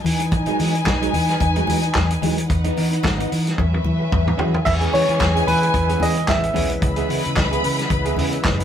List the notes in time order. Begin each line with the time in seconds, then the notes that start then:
0.04 E3 D#4 B4 G#5, open hi-hat, high conga
0.19 muted clean electric guitar stroke, closed hi-hat
0.31 muted clean electric guitar stroke, kick, closed hi-hat, muted conga
0.46 F#3 G#3 D#4, closed hi-hat
0.59 E3 F#3 G#3 D#4, open hi-hat, muted conga
0.74 muted clean electric guitar stroke, closed hi-hat
0.85 B1, muted clean electric guitar stroke, kick, snare, clap, high conga
1.01 F#3 G#3 D#4, closed hi-hat
1.13 E3, muted clean electric guitar stroke, open hi-hat, low conga
1.29 muted clean electric guitar stroke, snare, closed hi-hat
1.40 E2, muted clean electric guitar stroke, kick, closed hi-hat, muted conga
1.56 F#3 G#3 D#4, closed hi-hat
1.67 E3 F#3 G#3 D#4, open hi-hat, muted conga, low conga
1.83 muted clean electric guitar stroke, closed hi-hat
1.95 E2, muted clean electric guitar stroke, kick, snare, clap, high conga
2.11 muted clean electric guitar stroke, closed hi-hat
2.22 E3 F#3 G#3 D#4, open hi-hat, high conga
2.38 muted clean electric guitar stroke, closed hi-hat
2.48 E2 D#4 B4 F#5, muted clean electric guitar stroke, kick, closed hi-hat, muted conga
2.64 E3 B3 D#4, closed hi-hat
2.77 E3 B3 D#4, open hi-hat, muted conga
2.91 muted clean electric guitar stroke, closed hi-hat
3.03 G#1, muted clean electric guitar stroke, kick, snare, clap, high conga
3.18 E3 B3 D#4, closed hi-hat
3.30 E3, muted clean electric guitar stroke, open hi-hat
3.45 muted clean electric guitar stroke, snare, closed hi-hat
3.57 E2 C#4 B4 E5, muted clean electric guitar stroke, kick, high tom, muted conga
3.73 muted clean electric guitar stroke, high tom
3.84 E3, muted conga, low conga
3.99 muted clean electric guitar stroke
4.11 E2, muted clean electric guitar stroke, kick, mid tom, high conga
4.26 muted clean electric guitar stroke, mid tom
4.38 E3 C#4 F#4 G#4, floor tom, high conga
4.54 muted clean electric guitar stroke, floor tom
4.64 E2 C#3 E3 G#3 B3 E4 G#4 E5 G#5, muted clean electric guitar stroke, kick, crash, muted conga
4.80 B3 C#4 G#4, closed hi-hat
4.92 E3 B3 C#4 G#4 C#5, open hi-hat, muted conga
5.08 E3, muted clean electric guitar stroke, closed hi-hat
5.19 E2, muted clean electric guitar stroke, kick, snare, clap, high conga
5.35 B3 C#4 G#4, closed hi-hat
5.46 E3 B4, muted clean electric guitar stroke, open hi-hat, low conga
5.62 muted clean electric guitar stroke, closed hi-hat
5.73 E2, muted clean electric guitar stroke, kick, closed hi-hat, muted conga
5.88 B3 C#4 G#4, closed hi-hat
6.00 E3 B3 C#4 G#4 D#5, open hi-hat, muted conga, low conga
6.15 muted clean electric guitar stroke, closed hi-hat
6.27 A1 E5, muted clean electric guitar stroke, kick, snare, clap, high conga
6.42 muted clean electric guitar stroke, closed hi-hat
6.54 B1 B3 C#4 G#4, open hi-hat, high conga
6.69 muted clean electric guitar stroke, closed hi-hat
6.81 C#2 B4 B5, muted clean electric guitar stroke, kick, closed hi-hat, muted conga
6.96 B3 E4 G#4, closed hi-hat
7.08 C#3 B3 E4 G#4, open hi-hat, muted conga
7.24 C#3, muted clean electric guitar stroke, closed hi-hat
7.36 C#2, muted clean electric guitar stroke, kick, snare, clap, high conga
7.51 B3 E4 G#4, closed hi-hat
7.63 C#3, muted clean electric guitar stroke, open hi-hat
7.79 muted clean electric guitar stroke, snare, closed hi-hat
7.90 C#2, muted clean electric guitar stroke, kick, closed hi-hat, muted conga
8.05 B3 E4 G#4, closed hi-hat
8.17 C#3 B3 E4 G#4, open hi-hat, muted conga, low conga
8.33 muted clean electric guitar stroke, closed hi-hat
8.45 F#1, muted clean electric guitar stroke, kick, snare, clap, high conga
8.60 muted clean electric guitar stroke, closed hi-hat